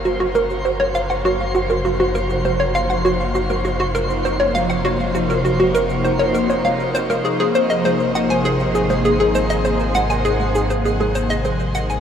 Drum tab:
SH |xxxxxxxxxxxxxxxx|xxxxxxxxxxxxxxxx|xxxxxxxxxxxxxxxx|xxxxxxxxxxxxxxxx|
CG |--o--o---o--o---|o--o---o--o---o-|-o---o--o---o--o|o---o--o---o--o-|

SH |xxxxxxxxxxxxxxxx|
CG |--o--o---o--o---|